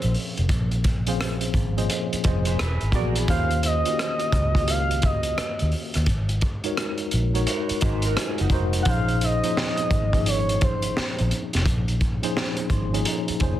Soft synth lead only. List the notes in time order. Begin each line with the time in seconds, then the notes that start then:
Already playing: C5
3.30 F5
3.66 D#5
4.70 F5
5.05 D#5
8.83 F#5
8.89 F5
9.24 D#5
10.28 C#5
10.63 C5